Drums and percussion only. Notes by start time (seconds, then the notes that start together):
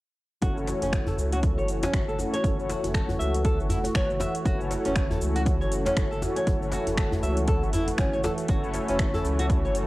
0.42 kick, closed hi-hat, djembe tone, shaker
0.57 shaker
0.67 closed hi-hat, djembe slap, shaker
0.82 closed hi-hat, djembe tone, shaker
0.93 finger snap, kick, closed hi-hat, shaker
1.06 djembe bass, shaker
1.19 shaker
1.32 closed hi-hat, shaker
1.43 kick, closed hi-hat, djembe tone, shaker
1.58 shaker
1.68 closed hi-hat, shaker
1.83 closed hi-hat, djembe slap, djembe tone, shaker
1.93 finger snap, kick, closed hi-hat, shaker
2.09 shaker
2.19 djembe tone, shaker
2.34 closed hi-hat, shaker
2.44 kick, closed hi-hat, djembe tone, shaker
2.59 shaker
2.69 closed hi-hat, djembe slap, shaker
2.84 closed hi-hat, djembe tone, shaker
2.94 finger snap, kick, closed hi-hat, shaker
3.09 djembe bass, shaker
3.21 shaker
3.34 closed hi-hat, shaker
3.45 kick, closed hi-hat, shaker
3.60 shaker
3.69 closed hi-hat, djembe bass, shaker
3.84 closed hi-hat, djembe tone, shaker
3.95 finger snap, kick, closed hi-hat, djembe tone, shaker
4.10 shaker
4.20 djembe slap, djembe tone, shaker
4.35 closed hi-hat, shaker
4.45 kick, closed hi-hat, djembe tone, shaker
4.61 shaker
4.71 closed hi-hat, djembe slap, shaker
4.85 closed hi-hat, djembe tone, shaker
4.96 finger snap, kick, closed hi-hat, shaker
5.11 djembe bass, shaker
5.21 shaker
5.36 closed hi-hat, shaker
5.46 kick, closed hi-hat, djembe tone, shaker
5.62 shaker
5.72 closed hi-hat, shaker
5.86 closed hi-hat, djembe slap, djembe tone, shaker
5.97 finger snap, kick, closed hi-hat, shaker
6.12 shaker
6.22 djembe tone, shaker
6.36 closed hi-hat, shaker
6.47 kick, closed hi-hat, djembe tone, shaker
6.62 shaker
6.72 closed hi-hat, djembe slap, shaker
6.87 closed hi-hat, djembe tone, shaker
6.97 finger snap, kick, closed hi-hat, shaker
7.12 djembe bass, shaker
7.23 shaker
7.37 closed hi-hat, shaker
7.48 kick, closed hi-hat, shaker
7.63 shaker
7.73 closed hi-hat, djembe bass, shaker
7.88 closed hi-hat, djembe tone, shaker
7.98 finger snap, kick, closed hi-hat, djembe tone, shaker
8.13 shaker
8.24 djembe slap, djembe tone, shaker
8.38 closed hi-hat, shaker
8.48 kick, closed hi-hat, djembe tone, shaker
8.64 shaker
8.74 closed hi-hat, djembe slap, shaker
8.89 closed hi-hat, djembe tone, shaker
8.99 finger snap, kick, closed hi-hat, shaker
9.14 djembe bass, shaker
9.25 shaker
9.39 closed hi-hat, shaker
9.50 kick, closed hi-hat, djembe tone, shaker
9.65 shaker
9.75 closed hi-hat, shaker